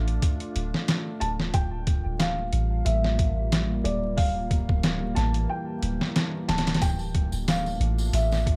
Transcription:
Already playing: 808-style bass A1, ambient pad A3 D4 F4
0.08 closed hi-hat
0.22 kick, closed hi-hat
0.40 closed hi-hat
0.55 808-style bass D1, closed hi-hat
0.74 snare
0.88 snare, closed hi-hat
1.20 808-style bass D1, felt piano A5, closed hi-hat
1.40 snare
1.54 808-style bass D1, ambient pad G3 A#3, felt piano G5, kick, closed hi-hat
1.87 kick, closed hi-hat
2.05 808-style bass D1
2.19 felt piano F5, snare, closed hi-hat
2.53 808-style bass A1, closed hi-hat
2.85 808-style bass A1, felt piano E5, closed hi-hat
3.04 snare
3.19 kick, closed hi-hat
3.52 snare, closed hi-hat
3.84 808-style bass D1, felt piano D5, closed hi-hat
4.17 ambient pad E3, felt piano F5, kick, open hi-hat
4.51 kick, closed hi-hat
4.69 808-style bass D1, kick
4.83 snare, closed hi-hat
5.15 808-style bass A1, felt piano A5, snare, closed hi-hat
5.34 closed hi-hat
5.50 felt piano G5
5.82 808-style bass D1, closed hi-hat
6.01 snare
6.16 snare, closed hi-hat
6.48 808-style bass D1, felt piano A5, snare, closed hi-hat
6.58 snare, closed hi-hat
6.67 snare, closed hi-hat
6.74 felt piano A5, snare, closed hi-hat
6.81 808-style bass D1, ambient pad A3 D4 F4, felt piano G5, kick, closed hi-hat, tambourine
6.99 tambourine
7.15 kick, closed hi-hat
7.32 808-style bass D1, tambourine
7.48 felt piano F5, snare, closed hi-hat, tambourine
7.66 tambourine
7.80 808-style bass A1, closed hi-hat
7.98 tambourine
8.13 808-style bass A1, felt piano E5, closed hi-hat, tambourine
8.32 snare, tambourine
8.47 kick, closed hi-hat

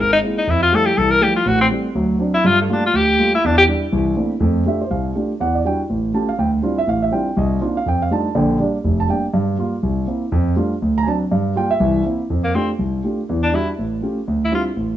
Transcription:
0.00 grand piano G#1, tenor saxophone A#4
0.13 tenor saxophone D#4
0.23 grand piano G#3 A#3 C4 E4
0.38 tenor saxophone D#4
0.47 grand piano F2, tenor saxophone E4
0.62 tenor saxophone F4
0.72 grand piano F3 G3 A3 E4, tenor saxophone A4
0.85 tenor saxophone G4
0.97 grand piano C2 E3, tenor saxophone A4
1.11 tenor saxophone A#4
1.21 grand piano F3 G3 A3 E4, tenor saxophone G4
1.36 tenor saxophone F4
1.46 grand piano A1 A2, tenor saxophone F#4
1.61 tenor saxophone C4
1.70 grand piano G3 A3 C4
1.95 grand piano D2 F#3
2.19 grand piano F#3 C4 D4
2.34 tenor saxophone E4
2.44 grand piano G2, tenor saxophone F4
2.61 tenor saxophone A3
2.69 grand piano G3 A3 A#3 F4, tenor saxophone D4
2.86 tenor saxophone F4
2.94 grand piano D2, tenor saxophone G4
3.19 grand piano G3 A3 A#3 F4
3.35 tenor saxophone E4
3.44 grand piano E2, tenor saxophone D4
3.58 tenor saxophone G4
3.68 grand piano G3 D4 E4
3.92 grand piano C2 E3
4.16 grand piano A3 A#3 C4 D4 E4
4.40 grand piano F2 A3
4.65 grand piano A3 D4 F4 G4 E5
4.82 grand piano C5
4.91 grand piano C2 F5
5.16 grand piano A3 D4 F4 G4
5.40 grand piano E2 F#5
5.55 grand piano D5
5.65 grand piano G3 D4 E4 F#4 G5
5.90 grand piano A1
6.14 grand piano A3 C#4 F4 G4 A5
6.29 grand piano F5
6.38 grand piano D2 G5
6.62 grand piano G3 C4 D4 E4 F4
6.78 grand piano E5
6.87 grand piano A1 F5
7.03 grand piano E5
7.12 grand piano G3 C4 D4 E4 F4 G5
7.37 grand piano C2 D#5
7.61 grand piano A#3 C4 D4 D#4 F4
7.77 grand piano F5
7.86 grand piano F2 G5
8.02 grand piano F5
8.11 grand piano G3 A3 D4 D#4 F4 A5
8.35 grand piano A#1 D3 G5
8.60 grand piano G3 A#3 D4
8.84 grand piano F1
9.00 grand piano A5
9.08 grand piano G3 A#3 D4 G5
9.34 grand piano G2
9.59 grand piano G3 A#3 F4
9.83 grand piano C2
10.07 grand piano A#3 C4 E4
10.32 grand piano F2
10.56 grand piano G3 A3 D4 F4
10.82 grand piano D2
10.98 grand piano A#5
11.03 grand piano F#3 C4 G#5
11.07 grand piano D4 A5
11.31 grand piano G2
11.56 grand piano G3 A#3 F4 G5
11.71 grand piano E5
11.80 grand piano C2 E3
12.06 grand piano A#3 C4 E4
12.30 grand piano F2
12.44 tenor saxophone A#3
12.54 grand piano A3 D4 F4 G4, tenor saxophone C4
12.79 grand piano C2
13.04 grand piano A3 D4 F4 G4
13.29 grand piano E2 E3
13.43 tenor saxophone D4
13.53 grand piano G3 D4 E4 F#4, tenor saxophone E4
13.79 grand piano A1
14.02 grand piano A3 C#4 F4 G4
14.28 grand piano D2
14.44 tenor saxophone E4
14.52 grand piano G3 C4 D4 E4 F4, tenor saxophone F4
14.76 grand piano A1

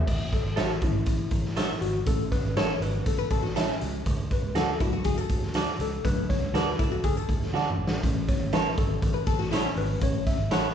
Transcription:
Already playing: tine electric piano E5
0.07 fingered electric bass A1, kick, crash
0.33 tine electric piano A4, kick, snare, closed hi-hat
0.44 fingered electric bass G#1
0.56 fingered electric bass A1, tine electric piano F#4, clean electric guitar A4 C#5 E5, snare, closed hi-hat
0.82 fingered electric bass G#1, tine electric piano E3 A3 C#4 E4, kick, closed hi-hat
1.06 fingered electric bass A1, kick, closed hi-hat
1.31 fingered electric bass A1, kick, closed hi-hat
1.45 snare
1.57 clean electric guitar A4 C#5 E5, snare, closed hi-hat
1.81 fingered electric bass G#1, tine electric piano F#4, closed hi-hat
2.06 fingered electric bass A1, tine electric piano E3 A3 C#4 A4, kick, closed hi-hat
2.32 tine electric piano B4, kick, snare, closed hi-hat
2.43 fingered electric bass G#1
2.56 fingered electric bass A1, clean electric guitar A4 C#5 E5, tine electric piano C#5, snare, closed hi-hat
2.80 fingered electric bass G#1, tine electric piano B4, closed hi-hat
3.06 fingered electric bass A1, tine electric piano A4, kick, closed hi-hat
3.19 hollow-body jazz guitar B4
3.30 fingered electric bass A1, hollow-body jazz guitar A4, kick, closed hi-hat
3.43 hollow-body jazz guitar F#4, snare
3.56 hollow-body jazz guitar E4, clean electric guitar A4 C#5 E5, snare, closed hi-hat
3.68 hollow-body jazz guitar C#4
3.81 fingered electric bass C#2, closed hi-hat
4.06 fingered electric bass D2, kick, closed hi-hat
4.31 tine electric piano B4, kick, closed hi-hat
4.43 fingered electric bass C#2
4.55 fingered electric bass D2, clean electric guitar F#4 A4 D5, tine electric piano A4, snare, closed hi-hat
4.74 tine electric piano A4
4.80 fingered electric bass C#2, tine electric piano F#3 A3 D4 F#4, hollow-body jazz guitar E4, kick, closed hi-hat
4.93 hollow-body jazz guitar F#4
5.04 fingered electric bass D2, hollow-body jazz guitar G#4, kick, closed hi-hat
5.18 hollow-body jazz guitar A4
5.29 fingered electric bass D2, kick, closed hi-hat
5.43 snare
5.54 clean electric guitar F#4 A4 D5, snare, closed hi-hat
5.79 fingered electric bass C#2, tine electric piano A4, closed hi-hat
6.04 fingered electric bass D2, tine electric piano F#3 A3 D4 B4, kick, closed hi-hat
6.29 tine electric piano C#5, kick, snare, closed hi-hat
6.40 fingered electric bass C#2
6.53 fingered electric bass D2, clean electric guitar F#4 A4 D5, tine electric piano B4, snare, closed hi-hat
6.79 fingered electric bass C#2, hollow-body jazz guitar E4, tine electric piano A4, kick, closed hi-hat
6.92 hollow-body jazz guitar F#4
7.04 fingered electric bass D2, hollow-body jazz guitar G#4, tine electric piano A4, kick, closed hi-hat
7.17 hollow-body jazz guitar A4
7.28 fingered electric bass D2, kick, closed hi-hat
7.42 snare
7.53 fingered electric bass D3, clean electric guitar F#4 A4 D5, snare
7.70 mid tom
7.78 fingered electric bass A1
7.87 snare
8.03 fingered electric bass A1, tine electric piano E3 A3 C#4, kick, closed hi-hat
8.28 tine electric piano C#5, kick, snare, closed hi-hat
8.41 fingered electric bass G#1
8.53 fingered electric bass A1, clean electric guitar E4 A4 C#5, tine electric piano B4, snare, closed hi-hat
8.77 fingered electric bass G#1, tine electric piano A4, kick, closed hi-hat
9.02 fingered electric bass A1, kick, closed hi-hat
9.14 hollow-body jazz guitar B4
9.27 fingered electric bass A1, hollow-body jazz guitar A4, kick, closed hi-hat
9.39 hollow-body jazz guitar F#4, snare
9.51 hollow-body jazz guitar E4, clean electric guitar E4 A4 C#5, snare, closed hi-hat
9.63 hollow-body jazz guitar C#4
9.76 fingered electric bass G#1, tine electric piano B4, open hi-hat
10.01 fingered electric bass A1, tine electric piano E3 A3 C#4 C#5, kick, closed hi-hat
10.27 tine electric piano E5, kick, snare, closed hi-hat
10.38 fingered electric bass G#1
10.51 fingered electric bass A1, clean electric guitar E4 A4 C#5, tine electric piano F#5, snare, closed hi-hat

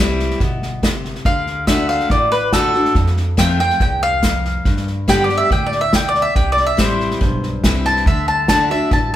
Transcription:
Already playing: upright bass C2, steel-string acoustic guitar C3 E3
0.00 steel-string acoustic guitar G3 C4 E4
0.19 snare
0.30 snare
0.40 upright bass G1, steel-string acoustic guitar B2, kick, snare
0.62 snare
0.83 steel-string acoustic guitar C3, kick, snare, hi-hat pedal
1.04 snare
1.15 snare
1.25 upright bass D2, steel-string acoustic guitar D3, mandolin F5, kick, snare
1.46 snare
1.67 steel-string acoustic guitar D3 A3 D4 F#4, mandolin E5, kick, snare, hi-hat pedal
1.89 mandolin F5, snare
2.00 snare
2.10 upright bass A1, steel-string acoustic guitar A2, mandolin D5, kick, snare
2.32 mandolin B4, snare
2.53 steel-string acoustic guitar D3 A3 D4 F#4, mandolin A4, kick, snare, hi-hat pedal
2.74 steel-string acoustic guitar D4 F#4, snare
2.85 snare
2.95 upright bass F2, steel-string acoustic guitar F2, kick, snare
3.06 snare
3.17 snare
3.37 steel-string acoustic guitar F3 A3 C4 F4, mandolin G5, kick, snare, hi-hat pedal
3.59 steel-string acoustic guitar C4 F4, mandolin G5, snare
3.70 snare
3.80 upright bass C2, steel-string acoustic guitar E2, mandolin G5, kick, snare
4.02 mandolin F5, snare
4.23 steel-string acoustic guitar F2, kick, snare, hi-hat pedal
4.44 snare
4.65 upright bass G2, steel-string acoustic guitar G2, kick, snare
4.76 snare
4.87 snare
5.08 steel-string acoustic guitar D3 G3 B3 G4, mandolin G5, kick, snare, hi-hat pedal
5.24 mandolin D5
5.29 steel-string acoustic guitar B3 G4, snare
5.38 mandolin E5
5.50 upright bass D2, steel-string acoustic guitar A2, mandolin G5, kick, snare
5.66 mandolin D5
5.72 snare
5.81 mandolin E5
5.93 steel-string acoustic guitar B2, mandolin G5, kick, snare, hi-hat pedal
6.09 mandolin D5
6.14 snare
6.22 mandolin E5
6.35 upright bass C2, steel-string acoustic guitar C3, mandolin G5, kick, snare
6.52 mandolin D5
6.57 snare
6.67 mandolin E5
6.77 upright bass A1, steel-string acoustic guitar E3 G3 C4 E4, mandolin C5, kick, snare, hi-hat pedal
7.00 snare
7.10 snare
7.21 upright bass B1, steel-string acoustic guitar G2, kick, snare
7.43 snare
7.63 upright bass C2, steel-string acoustic guitar E3 G3 C4 E4, kick, snare, hi-hat pedal
7.85 mandolin A5, snare
7.96 snare
8.06 upright bass D2, steel-string acoustic guitar D3, mandolin E5, kick, snare
8.27 mandolin A5, snare
8.48 steel-string acoustic guitar D3 A3 D4 F#4, mandolin A5, kick, snare, hi-hat pedal
8.70 steel-string acoustic guitar D4 F#4, mandolin E5, snare
8.91 upright bass A1, steel-string acoustic guitar G2, mandolin A5, kick, snare

